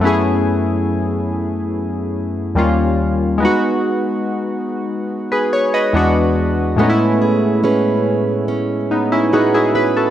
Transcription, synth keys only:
\new Staff \with { instrumentName = "Synth keys" } { \time 4/4 \key fis \dorian \tempo 4 = 71 << { r1 | r2 r16 <gis' b'>16 cis''16 <b' dis''>8 r8. | r2 r8 <b dis'>16 <cis' e'>16 <dis' fis'>16 <e' gis'>16 <gis' b'>16 <fis' a'>16 | } \\ { <fis, a b cis' e' gis'>2. <dis, g ais cis' eis'>4 | <gis b dis' fis'>2. <e, gis b d' fis'>4 | <a, gis b cis' dis' e'>1 | } >> }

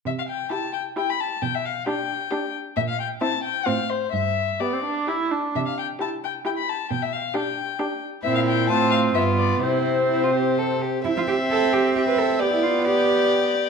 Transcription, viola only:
\new Staff \with { instrumentName = "Viola" } { \time 3/4 \key c \major \tempo 4 = 133 r4 e'4 e'4 | r4 d'4 d'4 | r4 c'4 c'4 | r4 b16 c'16 d'8 e'8 d'8 |
r4 e'4 e'4 | r4 d'4 d'4 | c'4 c'4 b4 | c'2~ c'8 r8 |
c'2. | b2. | }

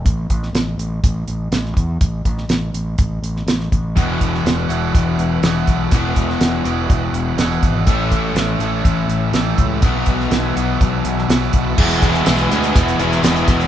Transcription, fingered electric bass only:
\new Staff \with { instrumentName = "Fingered electric bass" } { \clef bass \time 4/4 \key e \major \tempo 4 = 123 a,,8 a,,8 a,,8 a,,8 a,,8 a,,8 a,,8 e,8 | a,,8 a,,8 a,,8 a,,8 a,,8 a,,8 a,,8 a,,8 | e,,8 e,,8 e,,8 e,,8 e,,8 e,,8 e,,8 b,,8 | e,,8 e,,8 e,,8 e,,8 e,,8 e,,8 e,,8 gis,,8 |
a,,8 a,,8 a,,8 a,,8 a,,8 a,,8 a,,8 cis,8 | b,,8 b,,8 b,,8 b,,8 b,,8 b,,8 b,,8 b,,8 | e,,8 e,,8 b,,8 d,8 e,,8 e,,8 e,,8 e,,8 | }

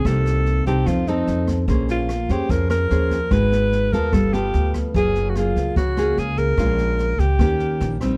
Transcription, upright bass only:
\new Staff \with { instrumentName = "Upright bass" } { \clef bass \time 4/4 \key bes \dorian \tempo 4 = 147 c,4. c,8 f,4 f,4 | bes,,4. f,8 f,4 ees,4 | aes,,4. ees,8 g,,4 d,4 | ges,,4. des,8 des,4 des,4 |
bes,,4. des,8 ees,4 bes,,4 | }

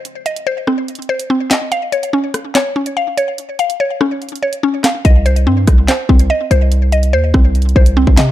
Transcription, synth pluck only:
\new Staff \with { instrumentName = "Synth pluck" } { \time 4/4 \key c \phrygian \tempo 4 = 144 <c' c'' ees''>8 ees''8 c''8 c'4 c''8 c'8 ees''8 | f''8 des''8 des'4 des''8 des'8 f''8 des''8~ | des''8 f''8 des''8 des'4 des''8 des'8 f''8 | ees''8 c''8 c'4 c''8 c'8 ees''8 c''8~ |
c''8 ees''8 c''8 c'4 c''8 c'8 ees''8 | }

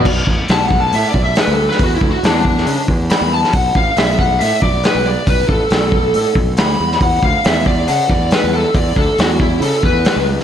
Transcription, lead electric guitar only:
\new Staff \with { instrumentName = "Lead electric guitar" } { \time 4/4 \key b \minor \tempo 4 = 138 r4 \tuplet 3/2 { a''8 fis''8 a''8 e''8 d''8 e''8 b'8 a'8 b'8 } | \tuplet 3/2 { fis'8 e'8 fis'8 d'8 d'4~ } d'8 r8 b''8 a''8 | fis''8 eis''8 e''8 fis''8 e''8 d''8 b'8 d''8 | b'8 a'2 r8 b''4 |
fis''8 eis''8 e''8 d''8 fis''8 d''8 b'8 a'8 | d''8 a'8 fis'8 e'8 a'8 b'4 r8 | }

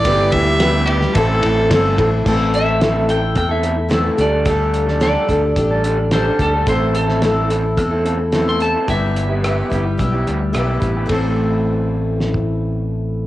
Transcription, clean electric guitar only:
\new Staff \with { instrumentName = "Clean electric guitar" } { \time 4/4 \key a \minor \tempo 4 = 109 <g b e' g'>8. <b e' g'>16 <g b e' g'>8 <g b e' g'>8 <a, e c' e' a'>16 <c' e' a'>16 <e c' e' a'>16 <c' e' a'>16 <a, e c' e' a'>8 <e c' e' a'>8 | <a, e c' e' a'>8. <c' e' a'>16 <a, e c' e' a'>8 <e c' e' a'>8. <c' e' a'>16 <e c' e' a'>8 <a, e c' e' a'>16 <c' e' a'>16 <d g d' a'>16 <g d' a'>16 | <d g d' a'>8. <g d' a'>16 <d g d' a'>8 <d g d' a'>8. <g d' a'>16 <d g d' a'>8 <d g d' a'>16 <g d' a'>8 <g d' a'>16 | <a, e c' e' a'>8. <c' e' a'>16 <a, e c' e' a'>8 <e c' e' a'>8. <c' e' a'>16 <e c' e' a'>8 <a, e c' e' a'>16 <c' e' a'>8 <c' e' a'>16 |
<g b e' g'>8. <b e' g'>16 <g b e' g'>8 <g b e' g'>8. <b e' g'>16 <g b e' g'>8 <g b e' g'>16 <b e' g'>8 <b e' g'>16 | <a, e c' e' a'>1 | }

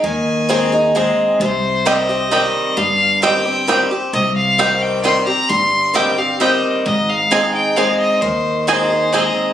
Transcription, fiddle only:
\new Staff \with { instrumentName = "Fiddle" } { \time 3/4 \key c \minor \tempo 4 = 132 aes''2 r4 | c''4 ees''2 | f''4 g''4. r8 | ees''8 f''4 g''8 c'''8 bes''8 |
c'''4 g''8 f''8 ees''8. r16 | ees''8 f''4 g''8 f''8 ees''8 | c''4 c''4 ees''8. r16 | }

